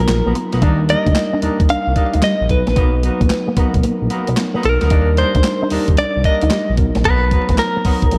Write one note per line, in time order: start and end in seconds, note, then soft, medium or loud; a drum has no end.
0.00 0.64 F#3 medium
0.00 0.64 B3 medium
0.00 0.62 D#4 medium
0.00 0.13 F4 medium
0.00 0.33 A#4 medium
0.00 0.63 A#4 medium
0.08 0.22 A#1 loud
0.08 muted clean electric guitar stroke soft
0.08 snare loud
0.08 clap loud
0.08 closed hi-hat medium
0.25 0.33 A#1 medium
0.25 0.35 A#3 medium
0.25 0.32 A#3 medium
0.25 0.35 B3 medium
0.25 0.35 D#4 medium
0.25 0.35 F#4 medium
0.25 0.35 A#4 medium
0.35 0.46 B3 medium
0.35 closed hi-hat medium
0.52 0.64 B1 medium
0.52 0.61 A#3 medium
0.52 0.62 B3 medium
0.52 0.61 D#4 medium
0.52 0.62 F#4 medium
0.52 0.61 A#4 medium
0.52 snare medium
0.52 closed hi-hat soft
0.61 0.95 D#2 loud
0.61 0.84 G3 medium
0.61 0.80 A#3 medium
0.61 0.80 D4 medium
0.61 0.85 D4 medium
0.61 0.73 D#4 medium
0.61 0.80 D#4 medium
0.61 0.85 D#4 medium
0.61 0.80 G4 medium
0.61 0.80 A#4 loud
0.61 0.85 A#4 medium
0.61 kick loud
0.61 closed hi-hat medium
0.88 1.34 G3 medium
0.88 1.07 A#3 medium
0.88 1.34 A#3 medium
0.88 1.06 D4 medium
0.88 1.06 D#4 medium
0.88 1.34 D#4 medium
0.88 1.06 G4 medium
0.88 1.07 A#4 medium
0.88 1.35 A#4 medium
0.88 1.39 D#5 medium
0.88 muted clean electric guitar stroke soft
0.88 closed hi-hat medium
1.06 1.13 D2 medium
1.06 1.12 D4 medium
1.06 kick medium
1.06 closed hi-hat medium
1.15 muted clean electric guitar stroke soft
1.15 snare loud
1.15 clap medium
1.15 closed hi-hat medium
1.33 1.39 D4 medium
1.42 1.50 D#2 soft
1.42 2.26 G3 medium
1.42 1.60 A#3 medium
1.42 1.60 D4 medium
1.42 2.26 D4 medium
1.42 1.60 D#4 medium
1.42 2.26 D#4 medium
1.42 1.53 D#4 medium
1.42 1.60 G4 medium
1.42 1.60 A#4 medium
1.42 2.26 A#4 medium
1.42 closed hi-hat medium
1.60 1.67 D#2 medium
1.60 kick medium
1.60 closed hi-hat medium
1.69 1.77 C2 medium
1.69 1.80 D4 medium
1.69 2.23 F5 loud
1.69 closed hi-hat medium
1.87 1.94 C2 medium
1.96 2.14 A#3 medium
1.96 2.14 D4 medium
1.96 2.14 D#4 medium
1.96 2.14 G4 medium
1.96 2.14 A#4 medium
1.96 muted clean electric guitar stroke soft
1.96 kick medium
1.96 closed hi-hat medium
2.13 2.21 D2 medium
2.13 2.19 D#4 medium
2.13 closed hi-hat medium
2.22 2.33 G3 medium
2.22 2.51 D#5 loud
2.22 snare loud
2.22 clap medium
2.22 closed hi-hat medium
2.41 2.48 A#1 medium
2.49 2.63 B1 loud
2.49 2.96 F#3 medium
2.49 2.96 B3 medium
2.49 2.96 D#4 medium
2.49 2.58 A4 medium
2.49 3.53 B4 medium
2.49 muted clean electric guitar stroke soft
2.49 kick loud
2.49 closed hi-hat medium
2.57 2.99 B4 medium
2.67 2.75 A#1 medium
2.67 2.72 B3 medium
2.67 snare medium
2.67 closed hi-hat soft
2.76 3.10 B1 loud
2.76 2.94 A#3 medium
2.76 2.87 B3 medium
2.76 2.94 B3 loud
2.76 2.94 D#4 medium
2.76 2.94 F#4 medium
2.76 2.94 A#4 loud
2.76 kick loud
2.76 closed hi-hat medium
3.03 3.48 F#3 medium
3.03 3.21 A#3 medium
3.03 3.21 B3 medium
3.03 3.48 B3 medium
3.03 3.21 D#4 medium
3.03 3.49 D#4 medium
3.03 3.21 F#4 medium
3.03 3.21 A#4 medium
3.03 3.49 B4 medium
3.03 muted clean electric guitar stroke soft
3.03 closed hi-hat medium
3.20 3.28 A#1 medium
3.20 3.26 A#3 medium
3.20 kick medium
3.20 closed hi-hat medium
3.30 muted clean electric guitar stroke soft
3.30 snare loud
3.30 clap medium
3.30 closed hi-hat medium
3.47 3.53 A#3 medium
3.56 3.64 B1 soft
3.56 4.40 F#3 medium
3.56 3.75 A#3 medium
3.56 3.74 B3 medium
3.56 3.68 B3 medium
3.56 4.41 B3 medium
3.56 3.74 D#4 medium
3.56 4.41 D#4 medium
3.56 3.75 F#4 medium
3.56 3.75 A#4 medium
3.56 4.41 A#4 medium
3.56 kick medium
3.56 closed hi-hat medium
3.74 3.81 B1 medium
3.74 kick medium
3.74 closed hi-hat medium
3.83 3.91 A#1 medium
3.83 3.94 A#3 medium
3.83 closed hi-hat medium
4.02 4.08 A#1 medium
4.10 4.28 A#3 medium
4.10 4.28 B3 medium
4.10 4.28 D#4 medium
4.10 4.28 F#4 medium
4.10 4.28 A#4 medium
4.10 muted clean electric guitar stroke soft
4.10 closed hi-hat medium
4.27 4.35 B1 medium
4.27 4.34 B3 medium
4.27 closed hi-hat medium
4.37 muted clean electric guitar stroke soft
4.37 snare loud
4.37 clap medium
4.37 closed hi-hat medium
4.54 4.60 A#3 medium
4.54 4.64 A#3 medium
4.54 4.64 B3 medium
4.54 4.64 D#4 medium
4.54 4.64 F#4 medium
4.54 4.64 A#4 medium
4.63 4.78 B1 medium
4.63 4.74 B3 medium
4.63 5.20 A#4 medium
4.63 closed hi-hat medium
4.81 4.89 D2 medium
4.81 4.90 A#3 medium
4.81 4.91 B3 medium
4.81 4.89 D#4 medium
4.81 4.91 F#4 medium
4.81 4.90 A#4 medium
4.81 snare medium
4.81 closed hi-hat soft
4.90 5.24 D#2 loud
4.90 5.13 G3 medium
4.90 5.09 A#3 loud
4.90 5.08 D4 medium
4.90 5.13 D4 medium
4.90 5.08 D#4 medium
4.90 5.01 D#4 medium
4.90 5.14 D#4 medium
4.90 5.08 G4 medium
4.90 5.09 A#4 loud
4.90 5.14 A#4 medium
4.90 kick loud
4.90 closed hi-hat medium
5.17 5.63 G3 medium
5.17 5.35 A#3 medium
5.17 5.35 D4 medium
5.17 5.63 D4 medium
5.17 5.35 D#4 medium
5.17 5.63 D#4 medium
5.17 5.35 G4 medium
5.17 5.35 A#4 medium
5.17 5.63 A#4 medium
5.17 5.68 C5 loud
5.17 muted clean electric guitar stroke soft
5.17 closed hi-hat medium
5.35 5.42 D2 medium
5.35 5.41 D4 medium
5.35 kick medium
5.35 closed hi-hat medium
5.44 muted clean electric guitar stroke soft
5.44 snare loud
5.44 clap medium
5.44 closed hi-hat medium
5.62 5.68 D4 medium
5.70 5.78 D#2 soft
5.70 6.55 G3 medium
5.70 5.89 A#3 medium
5.70 5.89 D4 medium
5.70 6.55 D4 medium
5.70 5.89 D#4 medium
5.70 5.82 D#4 medium
5.70 6.55 D#4 medium
5.70 5.89 G4 medium
5.70 5.89 A#4 medium
5.70 6.55 A#4 medium
5.70 open hi-hat medium
5.88 5.95 D#2 medium
5.88 kick medium
5.88 closed hi-hat medium
5.97 6.05 C2 medium
5.97 6.09 D4 medium
5.97 6.25 D5 medium
5.97 closed hi-hat medium
6.16 6.23 C2 medium
6.24 6.43 A#3 medium
6.24 6.42 D4 medium
6.24 6.42 D#4 medium
6.24 6.42 G4 medium
6.24 6.43 A#4 medium
6.24 6.75 D#5 loud
6.24 muted clean electric guitar stroke soft
6.24 kick medium
6.24 closed hi-hat medium
6.41 6.49 D2 medium
6.41 6.48 D#4 medium
6.41 closed hi-hat medium
6.50 6.62 G3 medium
6.50 snare loud
6.50 clap medium
6.50 closed hi-hat medium
6.70 6.76 A#1 medium
6.77 6.91 B1 medium
6.77 7.24 F#3 medium
6.77 7.25 B3 medium
6.77 7.25 D#4 medium
6.77 7.25 A#4 medium
6.77 muted clean electric guitar stroke soft
6.77 kick medium
6.77 closed hi-hat medium
6.95 7.03 A#1 medium
6.95 7.01 B3 medium
6.95 snare medium
6.95 closed hi-hat soft
7.04 7.38 B1 loud
7.04 7.23 A#3 medium
7.04 7.15 B3 medium
7.04 7.23 B3 loud
7.04 7.23 D#4 medium
7.04 7.23 F#4 medium
7.04 7.23 A#4 loud
7.04 7.59 B4 loud
7.04 kick loud
7.04 closed hi-hat medium
7.31 7.77 F#3 medium
7.31 7.50 A#3 medium
7.31 7.49 B3 medium
7.31 7.77 B3 medium
7.31 7.49 D#4 medium
7.31 7.77 D#4 medium
7.31 7.49 F#4 medium
7.31 7.50 A#4 medium
7.31 7.41 C5 medium
7.31 muted clean electric guitar stroke soft
7.31 kick medium
7.31 closed hi-hat medium
7.39 7.81 C#5 medium
7.49 7.56 A#1 medium
7.49 7.55 A#3 medium
7.49 kick medium
7.49 snare medium
7.49 closed hi-hat medium
7.58 8.18 A#4 loud
7.58 muted clean electric guitar stroke soft
7.58 snare loud
7.58 clap medium
7.58 closed hi-hat medium
7.76 7.82 A#3 medium
7.85 7.92 B1 soft
7.85 8.12 F#3 medium
7.85 8.03 A#3 medium
7.85 8.03 B3 medium
7.85 8.12 B3 medium
7.85 7.96 B3 medium
7.85 8.03 D#4 medium
7.85 8.12 D#4 medium
7.85 8.03 F#4 medium
7.85 8.03 A#4 medium
7.85 8.12 C#5 medium
7.85 kick medium
7.85 open hi-hat medium
8.02 8.10 B1 medium
8.02 kick medium
8.02 closed hi-hat medium
8.11 8.18 A#1 loud
8.11 8.18 F3 medium
8.11 8.18 A#3 medium
8.11 8.18 D4 medium
8.11 8.18 G#4 medium
8.11 closed hi-hat medium